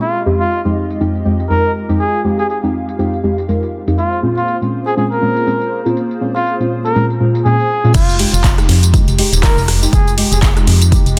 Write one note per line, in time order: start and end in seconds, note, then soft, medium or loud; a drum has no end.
0.01 3.94 G#3 medium
0.01 0.23 F4 medium
0.01 3.94 F4 medium
0.01 3.94 G4 medium
0.01 1.98 D#5 medium
0.01 tambourine medium
0.16 tambourine soft
0.26 0.45 F2 medium
0.26 0.45 G#3 medium
0.26 0.45 C4 medium
0.26 0.45 D#4 medium
0.26 0.45 G4 medium
0.40 0.61 F4 medium
0.40 tambourine medium
0.52 tambourine medium
0.65 0.98 F2 medium
0.65 0.98 G#3 medium
0.65 0.98 C4 medium
0.65 0.98 D#4 medium
0.65 0.98 G4 medium
0.65 tambourine soft
0.90 tambourine medium
1.00 1.23 F2 medium
1.00 1.23 G#3 medium
1.00 1.23 C4 medium
1.00 1.23 D#4 medium
1.00 1.23 G4 loud
1.00 tambourine medium
1.15 tambourine soft
1.25 1.47 F2 medium
1.25 1.47 G#3 medium
1.25 1.47 C4 medium
1.25 1.47 D#4 medium
1.25 1.47 G4 medium
1.40 tambourine medium
1.50 1.62 F2 medium
1.50 1.63 G#3 medium
1.50 1.63 C4 medium
1.50 1.63 D#4 medium
1.50 1.72 A#4 medium
1.50 1.63 A#4 loud
1.50 tambourine medium
1.65 tambourine soft
1.89 1.98 F2 medium
1.89 1.98 G#3 medium
1.89 1.98 C4 medium
1.89 1.98 D#4 medium
1.89 1.98 G4 loud
1.89 tambourine medium
1.99 2.22 G#4 medium
1.99 3.96 F5 medium
1.99 tambourine medium
2.14 tambourine soft
2.24 2.43 F2 medium
2.24 2.43 G#3 medium
2.24 2.43 C4 medium
2.24 2.43 D#4 medium
2.24 2.43 G4 loud
2.38 2.45 G#4 medium
2.38 tambourine medium
2.49 2.58 G#4 medium
2.49 tambourine medium
2.63 2.96 F2 medium
2.63 2.96 G#3 medium
2.63 2.96 C4 medium
2.63 2.96 D#4 medium
2.63 2.96 G4 medium
2.63 tambourine soft
2.89 tambourine medium
2.99 3.21 F2 medium
2.99 3.21 G#3 medium
2.99 3.21 C4 medium
2.99 3.21 D#4 medium
2.99 3.21 G4 loud
2.99 tambourine medium
3.13 tambourine soft
3.23 3.46 F2 medium
3.23 3.46 G#3 medium
3.23 3.46 C4 medium
3.23 3.46 D#4 medium
3.23 3.46 G4 loud
3.38 tambourine medium
3.48 3.61 F2 medium
3.48 3.61 G#3 medium
3.48 3.61 C4 medium
3.48 3.61 D#4 medium
3.48 3.61 A#4 loud
3.48 tambourine medium
3.63 tambourine soft
3.87 3.97 F2 medium
3.87 3.97 G#3 medium
3.87 3.97 C4 medium
3.87 3.97 D#4 medium
3.87 3.97 G4 loud
3.87 tambourine medium
3.98 7.91 A#3 medium
3.98 4.20 F4 medium
3.98 7.91 F4 medium
3.98 7.91 G#4 medium
3.98 7.91 C5 medium
3.98 tambourine medium
4.13 tambourine soft
4.22 4.41 A#2 medium
4.22 4.41 G#3 medium
4.22 4.41 C4 medium
4.22 4.41 C#4 medium
4.22 4.41 F4 loud
4.37 4.58 F4 medium
4.37 tambourine medium
4.48 tambourine medium
4.61 4.94 A#2 medium
4.61 4.94 G#3 medium
4.61 4.94 C4 medium
4.61 4.94 C#4 medium
4.61 4.94 F4 medium
4.61 tambourine soft
4.86 4.93 G#4 medium
4.86 tambourine medium
4.97 5.19 A#2 medium
4.97 5.19 G#3 medium
4.97 5.19 C4 medium
4.97 5.19 C#4 medium
4.97 5.19 F4 loud
4.97 5.06 G#4 medium
4.97 tambourine medium
5.11 5.80 A#4 medium
5.11 tambourine soft
5.22 5.44 A#2 medium
5.22 5.44 G#3 medium
5.22 5.44 C4 medium
5.22 5.44 C#4 medium
5.22 5.44 F4 loud
5.37 tambourine medium
5.47 5.59 A#2 medium
5.47 5.59 G#3 medium
5.47 5.59 C4 medium
5.47 5.59 C#4 medium
5.47 5.59 G#4 loud
5.47 tambourine medium
5.61 tambourine soft
5.85 5.95 A#2 medium
5.85 5.95 G#3 medium
5.85 5.95 C4 medium
5.85 5.95 C#4 medium
5.85 5.95 F4 loud
5.85 tambourine medium
5.97 tambourine medium
6.11 tambourine soft
6.21 6.40 A#2 medium
6.21 6.40 G#3 medium
6.21 6.40 C4 medium
6.21 6.40 C#4 medium
6.21 6.40 F4 loud
6.35 6.56 F4 medium
6.35 tambourine medium
6.46 tambourine medium
6.60 6.93 A#2 medium
6.60 6.93 G#3 medium
6.60 6.93 C4 medium
6.60 6.93 C#4 medium
6.60 6.93 F4 medium
6.60 tambourine soft
6.85 7.06 A#4 medium
6.85 tambourine medium
6.95 7.18 A#2 medium
6.95 7.18 G#3 medium
6.95 7.18 C4 medium
6.95 7.18 C#4 medium
6.95 7.18 F4 loud
6.95 tambourine medium
7.10 tambourine soft
7.20 7.42 A#2 medium
7.20 7.42 G#3 medium
7.20 7.42 C4 medium
7.20 7.42 C#4 medium
7.20 7.42 F4 loud
7.35 tambourine medium
7.45 7.58 A#2 medium
7.45 7.58 G#3 medium
7.45 7.58 C4 medium
7.45 7.58 C#4 medium
7.45 7.94 G#4 medium
7.45 7.58 G#4 loud
7.45 tambourine medium
7.60 tambourine soft
7.84 7.93 A#2 medium
7.84 7.93 G#3 medium
7.84 7.93 C4 medium
7.84 7.93 C#4 medium
7.84 7.93 F4 loud
7.84 tambourine medium
7.94 8.25 F1 loud
7.94 11.19 G#3 medium
7.94 11.19 D#4 medium
7.94 8.17 F4 medium
7.94 11.19 F4 medium
7.94 11.19 G4 medium
7.94 kick loud
7.94 closed hi-hat medium
7.94 crash loud
7.94 tambourine medium
8.09 tambourine soft
8.19 8.38 G#3 loud
8.19 8.38 D#4 medium
8.19 8.38 G4 loud
8.19 closed hi-hat medium
8.19 open hi-hat loud
8.33 8.63 F1 loud
8.33 8.55 F4 medium
8.33 tambourine medium
8.44 kick loud
8.44 snare loud
8.44 clap loud
8.44 closed hi-hat medium
8.44 tambourine medium
8.58 8.91 G#3 medium
8.58 8.91 D#4 medium
8.58 8.91 G4 medium
8.58 cross-stick medium
8.58 closed hi-hat soft
8.58 tambourine soft
8.69 9.00 F2 loud
8.69 snare soft
8.69 closed hi-hat medium
8.69 open hi-hat medium
8.83 closed hi-hat medium
8.83 tambourine medium
8.94 9.16 G#3 loud
8.94 9.16 D#4 medium
8.94 9.16 G4 loud
8.94 kick loud
8.94 closed hi-hat medium
8.94 tambourine medium
9.08 9.22 F1 medium
9.08 closed hi-hat medium
9.08 tambourine soft
9.18 9.41 G#3 loud
9.18 9.41 D#4 medium
9.18 9.41 G4 loud
9.18 closed hi-hat medium
9.18 open hi-hat loud
9.32 9.47 D#1 medium
9.32 snare soft
9.32 closed hi-hat soft
9.32 tambourine medium
9.43 9.56 G#3 loud
9.43 9.56 D#4 medium
9.43 9.65 A#4 loud
9.43 9.56 A#4 loud
9.43 kick loud
9.43 snare loud
9.43 clap loud
9.43 closed hi-hat medium
9.43 open hi-hat medium
9.43 tambourine medium
9.57 9.87 F1 medium
9.57 tambourine soft
9.68 cross-stick medium
9.68 snare soft
9.68 closed hi-hat medium
9.68 open hi-hat medium
9.82 9.92 G#3 medium
9.82 9.92 D#4 medium
9.82 9.92 G4 loud
9.82 snare soft
9.82 tambourine medium
9.93 10.24 F1 loud
9.93 10.15 G#4 medium
9.93 kick loud
9.93 closed hi-hat medium
9.93 tambourine medium
10.07 closed hi-hat soft
10.07 tambourine soft
10.18 10.36 G#3 loud
10.18 10.36 D#4 medium
10.18 10.36 G4 loud
10.18 closed hi-hat medium
10.18 open hi-hat loud
10.32 10.61 F1 loud
10.32 10.39 G#4 medium
10.32 snare soft
10.32 closed hi-hat soft
10.32 tambourine medium
10.42 10.52 G#4 medium
10.42 kick loud
10.42 snare loud
10.42 clap loud
10.42 closed hi-hat medium
10.42 tambourine medium
10.57 10.89 G#3 medium
10.57 10.90 D#4 medium
10.57 10.90 G4 medium
10.57 cross-stick medium
10.57 closed hi-hat soft
10.57 tambourine soft
10.67 10.98 F2 loud
10.67 closed hi-hat medium
10.67 open hi-hat loud
10.82 closed hi-hat medium
10.82 tambourine medium
10.92 11.14 G#3 loud
10.92 11.14 D#4 medium
10.92 11.14 G4 loud
10.92 kick loud
10.92 closed hi-hat medium
10.92 tambourine medium
11.06 11.19 F1 loud
11.06 closed hi-hat medium
11.06 tambourine soft